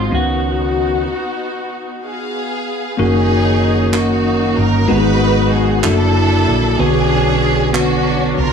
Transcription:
Already playing: G#2 F#3 G#3 C4 D#4 F4 F#4 G#4
0.10 C#2 C#3 D#3 B3 C#4 D#4 F4 F#4
0.15 F#4
0.20 F#4
2.04 B3 G#4 F5
2.97 F#1 D#3 F#3 A#3 C#4 D#4 F#4 G#4 A#4
3.93 A#3 C#4 D#4 F#4 A#4, clap
4.56 G1 A#4
4.87 G#1 G#2 D#3 F#3 G#3 B3 D#4 F#4 G4 B4
4.95 G#4
5.53 G#4
5.82 F#1 D3 F#3 A3 A#3 D4 E4 F#4 A4, clap
5.89 A#3
6.49 A#1
6.78 B1 B2 D3 F#3 B3 C#4 D4 F#4 G#4 B4 C#5
7.73 D3 B3 C#4 D4 F#4 B4 C#5, clap
8.38 C2 F4 A#4

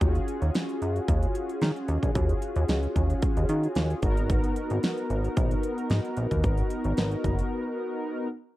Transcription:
0.01 D#2 C#4 F4 F#4 G4, kick, closed hi-hat
0.09 G#4
0.15 closed hi-hat
0.28 closed hi-hat
0.42 D#2, closed hi-hat
0.55 snare, closed hi-hat
0.69 closed hi-hat
0.82 F#2, closed hi-hat
0.96 closed hi-hat
1.08 D#2, kick, closed hi-hat
1.23 closed hi-hat
1.35 closed hi-hat
1.49 closed hi-hat
1.61 D#3, snare, closed hi-hat
1.76 closed hi-hat
1.88 D#2, closed hi-hat
2.03 A#1, kick, closed hi-hat
2.15 D#2, kick, closed hi-hat
2.29 closed hi-hat
2.42 closed hi-hat
2.56 D#2, closed hi-hat
2.68 C#2, snare, closed hi-hat
2.83 closed hi-hat
2.96 D#2, kick, closed hi-hat
3.10 closed hi-hat
3.22 kick, closed hi-hat
3.37 D#2, closed hi-hat
3.49 D#3, closed hi-hat
3.63 closed hi-hat
3.75 D#2, snare, closed hi-hat
3.90 closed hi-hat
4.02 G#1 B3 D#4 F#4 A#4, kick, closed hi-hat
4.17 closed hi-hat
4.30 kick, closed hi-hat
4.44 closed hi-hat
4.56 closed hi-hat
4.70 G#1, closed hi-hat
4.83 snare, closed hi-hat
4.97 closed hi-hat
5.10 G#1, closed hi-hat
5.24 closed hi-hat
5.37 A#1, kick, closed hi-hat
5.51 closed hi-hat
5.63 closed hi-hat
5.78 closed hi-hat
5.90 G#2, snare, closed hi-hat
6.05 closed hi-hat
6.17 A#1, closed hi-hat
6.31 D#2, kick, closed hi-hat
6.44 G#1, kick, closed hi-hat
6.57 closed hi-hat
6.70 closed hi-hat
6.84 G#1, closed hi-hat
6.97 G#1, snare, closed hi-hat
7.11 closed hi-hat
7.24 F#1, kick, closed hi-hat
7.39 closed hi-hat

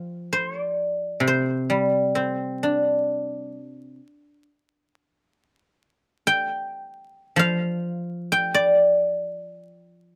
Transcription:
Already playing: F3 F5 G5
0.33 C5
0.60 D5
1.20 C3
1.27 C5
1.70 G3
2.15 C4
2.63 D4
6.27 G5
7.36 F3 F5
8.32 G5
8.54 D5

